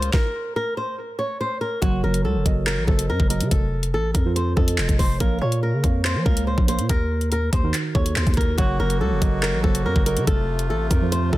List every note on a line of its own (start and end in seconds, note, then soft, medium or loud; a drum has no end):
0.00 0.11 C#2 loud
0.00 0.12 C#3 medium
0.00 0.12 A#3 medium
0.00 0.11 C5 medium
0.00 closed hi-hat medium
0.13 0.53 A#4 medium
0.13 kick loud
0.13 snare medium
0.56 0.74 A#4 medium
0.77 0.96 C5 medium
1.19 1.37 C#5 medium
1.41 1.59 C5 medium
1.61 1.80 A#4 medium
1.82 2.03 F#1 loud
1.82 2.35 F#3 loud
1.82 2.01 F#4 loud
1.82 2.35 F#4 medium
1.82 2.36 A#4 medium
1.82 2.36 C#5 loud
1.82 kick loud
1.82 closed hi-hat medium
2.04 2.26 F#1 loud
2.04 2.22 A#4 medium
2.14 closed hi-hat medium
2.25 2.37 C#2 loud
2.25 2.64 A4 medium
2.35 2.45 F#1 loud
2.45 2.79 F#1 loud
2.45 2.81 F#3 medium
2.45 2.81 F#4 medium
2.45 2.81 A#4 medium
2.45 2.81 D#5 medium
2.45 kick loud
2.45 closed hi-hat medium
2.67 2.85 A#4 medium
2.67 clap loud
2.77 2.87 A1 loud
2.87 3.11 F#1 loud
2.87 3.23 F#3 medium
2.87 3.23 F#4 medium
2.87 3.06 A4 medium
2.87 3.23 A#4 medium
2.87 3.24 C5 medium
2.87 kick medium
2.99 closed hi-hat medium
3.09 3.19 F#2 loud
3.09 3.28 A#4 medium
3.20 3.42 F#1 loud
3.20 kick loud
3.29 3.51 F#3 medium
3.29 3.51 F#4 medium
3.29 3.51 A#4 medium
3.29 3.49 A#4 medium
3.29 3.51 D#5 medium
3.29 closed hi-hat medium
3.41 3.51 C#3 loud
3.41 closed hi-hat medium
3.51 3.95 F1 loud
3.51 3.91 A4 medium
3.51 kick loud
3.51 closed hi-hat medium
3.83 closed hi-hat medium
3.94 4.14 A1 loud
3.94 4.12 A4 medium
4.14 4.55 F2 loud
4.14 4.33 A#4 medium
4.14 kick loud
4.14 closed hi-hat medium
4.25 4.52 F3 medium
4.25 4.52 F4 medium
4.25 4.52 A4 medium
4.25 4.52 C5 medium
4.36 4.54 C5 medium
4.36 closed hi-hat medium
4.56 4.77 F2 loud
4.56 5.10 F3 medium
4.56 5.10 F4 medium
4.56 4.96 A4 medium
4.56 5.10 A4 medium
4.56 5.10 D#5 medium
4.56 kick medium
4.68 closed hi-hat medium
4.78 4.88 F1 loud
4.78 clap loud
4.89 5.19 F1 loud
4.89 kick loud
4.89 closed hi-hat medium
4.99 5.18 C5 medium
4.99 kick loud
4.99 open hi-hat medium
5.20 5.41 A#1 loud
5.20 5.73 A#3 loud
5.20 5.73 A#4 medium
5.20 5.39 A#4 loud
5.20 5.73 C#5 medium
5.20 5.74 F5 loud
5.20 kick loud
5.20 closed hi-hat medium
5.41 5.75 A#2 loud
5.41 5.60 C#5 medium
5.52 closed hi-hat medium
5.63 6.02 A#4 medium
5.73 5.83 C#3 loud
5.83 6.17 F2 loud
5.83 6.19 A#3 medium
5.83 6.19 A#4 medium
5.83 6.19 C#5 medium
5.83 6.20 F5 medium
5.83 kick loud
5.83 closed hi-hat medium
6.05 6.23 C5 medium
6.05 clap loud
6.15 6.25 F3 loud
6.25 6.56 C#2 loud
6.25 6.61 A#3 medium
6.25 6.44 A#4 medium
6.25 6.61 A#4 medium
6.25 6.62 C#5 medium
6.25 6.62 F5 loud
6.25 kick medium
6.37 closed hi-hat medium
6.47 6.66 C5 medium
6.58 6.80 A#1 loud
6.58 kick loud
6.67 6.89 A#3 medium
6.67 6.89 A#4 medium
6.67 6.87 C5 medium
6.67 6.89 C#5 medium
6.67 6.90 F5 medium
6.67 closed hi-hat loud
6.79 6.89 A#2 loud
6.79 closed hi-hat medium
6.89 7.50 D#2 loud
6.89 7.29 A#4 loud
6.89 kick loud
6.89 closed hi-hat medium
7.21 closed hi-hat soft
7.32 7.51 A#4 medium
7.32 closed hi-hat medium
7.53 7.73 D#2 loud
7.53 7.72 C5 medium
7.53 kick loud
7.53 closed hi-hat medium
7.63 7.90 D#3 medium
7.63 7.90 D#4 medium
7.63 7.90 F#4 medium
7.63 7.90 A#4 medium
7.74 clap medium
7.74 closed hi-hat medium
7.95 8.15 D#2 loud
7.95 8.48 D#3 medium
7.95 8.48 D#4 medium
7.95 8.48 F#4 medium
7.95 8.49 A4 medium
7.95 8.13 C#5 medium
7.95 kick medium
8.06 closed hi-hat medium
8.16 8.26 D#2 loud
8.16 8.35 C5 medium
8.16 clap loud
8.27 8.57 D#2 loud
8.27 kick loud
8.27 closed hi-hat medium
8.34 8.56 A#4 medium
8.34 kick loud
8.34 cross-stick medium
8.34 closed hi-hat medium
8.41 closed hi-hat medium
8.58 8.79 F#1 loud
8.58 10.26 C#3 medium
8.58 9.11 F#3 loud
8.58 10.26 A#3 medium
8.58 8.77 F#4 loud
8.58 9.11 F#4 medium
8.58 10.26 F#4 medium
8.58 9.12 A#4 medium
8.58 9.12 C#5 loud
8.58 kick loud
8.58 closed hi-hat medium
8.80 9.02 F#1 loud
8.80 8.98 A#4 medium
8.90 closed hi-hat medium
9.01 9.13 C#2 loud
9.01 9.40 A4 medium
9.11 9.21 F#1 loud
9.21 9.55 F#1 loud
9.21 9.57 F#3 medium
9.21 9.57 F#4 medium
9.21 9.57 A#4 medium
9.21 9.57 D#5 medium
9.21 kick loud
9.21 closed hi-hat medium
9.43 9.61 A#4 medium
9.43 clap loud
9.53 9.64 A1 loud
9.63 9.87 F#1 loud
9.63 9.99 F#3 medium
9.63 9.99 F#4 medium
9.63 9.82 A4 medium
9.63 9.99 A#4 medium
9.63 10.00 C5 medium
9.63 kick medium
9.75 closed hi-hat medium
9.85 9.95 F#2 loud
9.85 10.04 A#4 medium
9.96 10.18 F#1 loud
9.96 kick loud
10.05 10.27 F#3 medium
10.05 10.27 F#4 medium
10.05 10.27 A#4 medium
10.05 10.25 A#4 medium
10.05 10.27 D#5 medium
10.05 closed hi-hat loud
10.17 10.27 C#3 loud
10.17 closed hi-hat medium
10.27 10.71 F1 loud
10.27 11.38 C3 medium
10.27 11.38 A3 medium
10.27 11.38 F4 loud
10.27 10.67 A4 medium
10.27 kick loud
10.27 closed hi-hat medium
10.59 closed hi-hat medium
10.70 10.90 A1 loud
10.70 10.88 A4 medium
10.90 11.31 F2 loud
10.90 11.09 A#4 medium
10.90 kick loud
10.90 closed hi-hat medium
11.01 11.28 F3 medium
11.01 11.28 F4 medium
11.01 11.28 A4 medium
11.01 11.28 C5 medium
11.12 11.31 C5 medium
11.12 closed hi-hat medium
11.32 11.38 F2 loud
11.32 11.38 F3 medium
11.32 11.38 F4 medium
11.32 11.38 A4 medium
11.32 11.38 D#5 medium
11.32 kick medium